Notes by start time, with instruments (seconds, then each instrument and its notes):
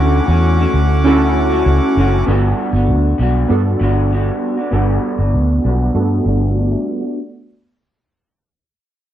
Already playing: fingered electric bass D2, clean electric guitar D3 A3 C#4 F#4, synth keys C#4 E4 F#4 A4, accordion C#4 F#5 D6
0.27 fingered electric bass E2, clean electric guitar A3 C#4 F#4
0.57 clean electric guitar A3 C#4 F#4
0.74 fingered electric bass D2
1.04 clean electric guitar D3 A3 C#4 F#4, synth keys C#4 E4 F#4 A4
1.49 clean electric guitar A3 C#4 F#4
1.66 fingered electric bass C#2
1.97 fingered electric bass F#1, clean electric guitar D3 A3 C#4 F#4
2.26 fingered electric bass G1, clean electric guitar G3 B3 D4 F#4, synth keys B3 D4 F#4 A4
2.72 fingered electric bass G1, clean electric guitar B3 D4 F#4
2.89 fingered electric bass D2
3.18 fingered electric bass B1, clean electric guitar G3 B3 D4 F#4
3.48 fingered electric bass G2, synth keys B3 D4 F#4 A4
3.79 fingered electric bass G1, clean electric guitar G3 B3 D4 F#4
4.11 clean electric guitar G3 B3 D4 F#4
4.57 clean electric guitar B3 D4 F#4
4.71 fingered electric bass G1, clean electric guitar G3 B3 D4 F#4, synth keys B3 D4 F#4 A4
5.18 fingered electric bass G1, clean electric guitar B3 D4 F#4
5.34 fingered electric bass D2
5.64 fingered electric bass B1, clean electric guitar G3 B3 D4 F#4
5.93 fingered electric bass G2, synth keys A3 D4 F#4 A4
6.00 synth keys B3
6.24 fingered electric bass G1, clean electric guitar G3 B3 D4
6.28 clean electric guitar F#4
6.55 clean electric guitar G3 B3 D4 F#4
6.71 synth keys G4 E5
6.87 synth keys A4 F#5
7.01 clean electric guitar B3 D4 F#4, synth keys F#4 D5